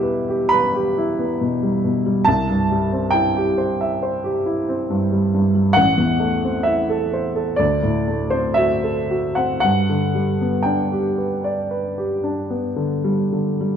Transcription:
Already playing: E2 B2 G3 B3 E4 G4 E5
0.03 B4
0.29 G4
0.49 B4 B5
0.75 G4
0.98 E4
1.19 B3
1.41 B2
1.63 G3
1.84 B2
2.06 G3
2.25 C2 A5
2.49 G2
2.72 G3
2.92 C4
3.11 E4 G5
3.36 G4
3.58 C5
3.81 E5
4.03 C5
4.24 G4
4.46 E4
4.69 C4
4.90 G2
5.12 G3
5.34 G2
5.55 G3
5.73 A1 F#5
5.97 E2
6.20 A3
6.44 C4
6.63 E4 E5
6.90 A4
7.13 C5
7.36 A4
7.56 D2 D5
7.83 A2
8.08 A3
8.30 C4 C5
8.54 F#4 E5
8.84 A4
9.10 F#4
9.35 C4 F#5
9.60 G2 F#5
9.89 D3
10.15 G3
10.41 B3
10.63 D4 G5
10.92 G4
11.18 B4
11.44 D5
11.71 B4
11.98 G4
12.24 D4
12.50 B3
12.76 D3
13.04 G3
13.32 D3
13.61 G3

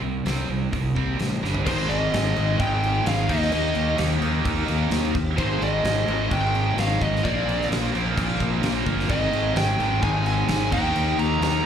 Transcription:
0.02 C2 C3 G3
0.25 C2 C3 G3 C4, snare, open hi-hat
0.48 C2 C3 G3
0.72 C2 C3 G3, kick, open hi-hat
0.95 C2 C3 G3 C4, kick
1.19 A1 C3 G3, snare, open hi-hat
1.42 G1 G2 D3 G3, snare
1.54 floor tom
1.65 G#1 G#2 D#3 G#3 C5, kick, crash
1.89 G#1 D#5, crash
2.13 G#1, snare, crash
2.34 G#1 G#2 D#3 G#3, crash
2.58 G#2 D#3 G#3 G5, kick, crash
2.83 crash
3.04 G#1 G#2 D#3 G#3 F5, snare, crash
3.27 D#2 D#3 A#3 D#4 D#5, kick, crash
3.42 snare
3.52 D#2 D#5, crash
3.75 D#2, crash
3.97 D#2 D#3 A#3 D#4, snare, crash
4.21 D#2 D#3 A#3 D#4, crash
4.45 D#2, kick, crash
4.67 D#2 D#3 A#3 D#4, crash
4.91 D#2, snare, crash
5.15 D#2, kick, crash
5.38 G#1 G#2 D#3 G#3 C5, kick, crash
5.62 G#1 D#5, crash
5.85 G#1, snare, crash
6.07 G#1 G#2 D#3 G#3, crash
6.29 G#1 G#2 D#3 G#3, kick, crash
6.34 G5
6.55 crash
6.77 G#1 G#2 D#3 G#3 F5, snare, crash
7.01 G#1 D#5, kick, crash
7.15 snare
7.22 A#1 A#2 F3 A#3 D5, kick, crash
7.48 A#1, crash
7.61 snare
7.70 A#1, snare, crash
7.92 A#1 A#2 F3 A#3, crash
8.16 A#1 A#2 F3 A#3, kick, crash
8.40 A#1, kick, crash
8.63 A#1 A#2 F3 A#3, snare, crash
8.86 G1, kick, crash
8.99 snare
9.08 G#1 G#2 D#3 G#3 D#5, kick, crash
9.32 G#1, crash
9.56 G#1 G5, snare, crash
9.78 G#1 G#2 D#3 G#3, crash
10.02 G#1 G#2 D#3 G#3 G#5, kick, crash
10.26 G#5, crash
10.47 G#1 G#2 D#3 G#3, snare, crash
10.71 D#2 D#3 A#3 D#4 G5, kick, crash
10.95 D#2, crash
11.18 D#2 A#5, crash
11.41 D#2 D#3 A#3 D#4 A#5, snare, crash

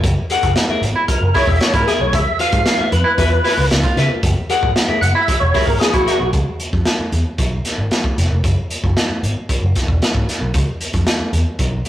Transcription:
0.04 F#1, kick, closed hi-hat
0.30 G#4 A#4 F#5, closed hi-hat
0.43 F#1, kick, closed hi-hat
0.56 muted clean electric guitar stroke, snare, closed hi-hat
0.68 G#4 A#4 E5, muted picked electric bass stroke
0.81 G#1, muted clean electric guitar stroke, closed hi-hat
0.95 E4, muted clean electric guitar stroke
1.08 A#4, muted picked electric bass stroke, muted clean electric guitar stroke, kick, closed hi-hat
1.21 F#1, muted clean electric guitar stroke
1.34 E4 G#4 A#4 C#5 E5, kick, snare, open hi-hat
1.47 E1 E5, muted clean electric guitar stroke, kick
1.61 C#5, muted picked electric bass stroke, snare, closed hi-hat
1.74 G#1 E4 A#4, muted clean electric guitar stroke, kick, closed hi-hat
1.87 G#4 A#4 E5, snare, closed hi-hat
2.00 B1 C#5, muted clean electric guitar stroke
2.13 C#2 E5, kick, closed hi-hat
2.39 F4 B4 F5, closed hi-hat
2.52 G#2, kick, closed hi-hat
2.66 snare, closed hi-hat
2.78 F4 B4 E5, muted picked electric bass stroke
2.92 F2 B4, muted clean electric guitar stroke, closed hi-hat
3.04 E4, muted clean electric guitar stroke
3.18 E2 F4 B4 E5, kick, closed hi-hat
3.31 muted clean electric guitar stroke
3.44 E4 F4 B4 E5, snare, open hi-hat
3.57 C#2, muted clean electric guitar stroke
3.71 C#2, muted clean electric guitar stroke, snare, closed hi-hat
3.83 F4, muted clean electric guitar stroke, kick, closed hi-hat
3.96 C#3 F4 B4 E5, snare, closed hi-hat
4.11 muted clean electric guitar stroke
4.23 F#1, kick, closed hi-hat
4.50 G#4 A#4 F#5, closed hi-hat
4.63 G#1, kick
4.76 muted clean electric guitar stroke, snare, closed hi-hat
4.88 G#4 A#4 E5, muted picked electric bass stroke
5.01 F#1 F#5, muted clean electric guitar stroke, closed hi-hat
5.15 E4 E5, muted clean electric guitar stroke
5.28 muted clean electric guitar stroke, muted picked electric bass stroke, kick, closed hi-hat
5.40 E1 C#5, muted clean electric guitar stroke
5.54 E4 G#4 A#4 E5, kick, snare, open hi-hat
5.65 G#1 A#4, muted clean electric guitar stroke, kick
5.80 G#4, muted clean electric guitar stroke, muted picked electric bass stroke, snare, closed hi-hat
5.93 A#1 E4 F#4, muted clean electric guitar stroke, kick, closed hi-hat
6.06 G#4 A#4 E5, snare, closed hi-hat
6.20 B1, muted clean electric guitar stroke
6.33 C#2, kick, closed hi-hat
6.60 closed hi-hat
6.73 F2, kick
6.85 snare, closed hi-hat
6.99 muted picked electric bass stroke
7.12 E2, closed hi-hat
7.38 B1, kick, closed hi-hat
7.65 snare, closed hi-hat
7.78 G#1
7.91 snare, closed hi-hat
8.04 kick
8.18 F1, snare, closed hi-hat
8.31 F1
8.44 F#1, kick, closed hi-hat
8.70 closed hi-hat
8.84 F#1, kick
8.97 snare, closed hi-hat
9.10 muted picked electric bass stroke
9.23 G#1, closed hi-hat
9.49 muted picked electric bass stroke, kick, closed hi-hat
9.62 F#1
9.75 kick, snare, closed hi-hat
9.88 E1, kick
10.02 muted picked electric bass stroke, snare, closed hi-hat
10.15 G#1, kick
10.29 snare, closed hi-hat
10.41 B1
10.54 C#2, kick, closed hi-hat
10.81 closed hi-hat
10.93 F2, kick, closed hi-hat
11.07 snare, closed hi-hat
11.20 muted picked electric bass stroke
11.33 E2, closed hi-hat
11.59 B1, kick, closed hi-hat
11.85 closed hi-hat

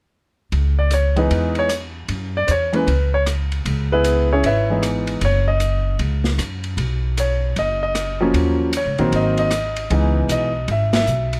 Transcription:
0.52 C#2, ride
0.79 D5
0.91 C#5, hi-hat pedal, ride
1.16 E3 G#3 B3 D#4 B4, ride
1.30 E2, ride
1.55 C#5, ride
1.69 cross-stick, hi-hat pedal, ride
2.08 F#2, ride
2.37 D5
2.47 E2 C5 C#5, hi-hat pedal, ride
2.73 E3 G#3 A#3 C#4 B4, ride
2.87 C#2, ride
3.14 C#5
3.26 cross-stick, hi-hat pedal, ride
3.52 ride
3.65 C#2, ride
3.92 B3 E4 G#4 B4
4.04 hi-hat pedal, ride
4.33 C#4 E4 G#4 C#5
4.43 G#1 E4 B4 C#5 E5, ride
4.70 E3 G#3 B3 D#4
4.83 cross-stick, hi-hat pedal, ride
5.07 ride
5.21 F#1 C#5, ride
5.48 D#5
5.60 hi-hat pedal, ride
5.99 C#2, ride
6.24 snare
6.38 F#2, cross-stick, hi-hat pedal, ride
6.64 ride
6.77 B1, ride
7.17 C#5, hi-hat pedal, ride
7.56 F#1 D#5, ride
7.83 D#5
7.95 cross-stick, hi-hat pedal, ride
8.20 F3 F#3 A#3 C#4
8.34 D#2, ride
8.73 hi-hat pedal, ride
8.77 C#5
8.85 C#2
8.98 A#1 D#3 F#3 A#3 C4, ride
9.12 G#1 D#5, ride
9.37 D#5, ride
9.51 cross-stick, hi-hat pedal, ride
9.76 ride
9.90 C#2 E3 G#3 B3 D#4, ride
10.28 B1 D#5, hi-hat pedal, ride
10.68 G#1 E5, ride
10.93 E5, snare, ride
11.06 B1, hi-hat pedal
11.33 ride

